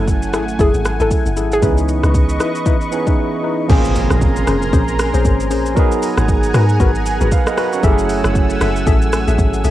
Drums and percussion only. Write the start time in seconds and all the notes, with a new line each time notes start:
0.08 kick, shaker
0.22 shaker
0.34 cross-stick, shaker
0.48 shaker
0.59 kick, shaker
0.74 shaker
0.85 cross-stick, shaker
1.00 shaker
1.11 kick, shaker
1.26 shaker
1.37 shaker
1.52 shaker
1.63 kick, shaker
1.78 shaker
1.89 shaker
2.04 cross-stick, shaker
2.14 kick, shaker
2.29 shaker
2.40 cross-stick, shaker
2.55 shaker
2.66 kick, shaker
2.81 shaker
2.92 shaker
3.07 kick, shaker
3.70 kick, crash, shaker
3.85 shaker
3.96 open hi-hat, shaker
4.10 cross-stick, shaker
4.21 kick, shaker
4.36 shaker
4.47 cross-stick, open hi-hat, shaker
4.62 shaker
4.73 kick, shaker
4.88 shaker
4.99 cross-stick, open hi-hat, shaker
5.14 shaker
5.25 kick, shaker
5.40 shaker
5.51 open hi-hat, shaker
5.66 shaker
5.77 kick, shaker
5.92 shaker
6.02 open hi-hat, shaker
6.17 cross-stick, shaker
6.28 kick, shaker
6.43 shaker
6.54 cross-stick, open hi-hat, shaker
6.69 shaker
6.80 kick, shaker
6.95 shaker
7.06 open hi-hat, shaker
7.21 shaker
7.32 kick, shaker
7.47 cross-stick, shaker
7.58 cross-stick, open hi-hat, shaker
7.73 shaker
7.83 kick, shaker
7.98 shaker
8.09 open hi-hat, shaker
8.24 cross-stick, shaker
8.35 kick, shaker
8.50 shaker
8.61 cross-stick, open hi-hat, shaker
8.76 shaker
8.87 kick, shaker
9.02 shaker
9.13 cross-stick, open hi-hat, shaker
9.28 shaker
9.39 kick, shaker
9.54 shaker
9.64 open hi-hat, shaker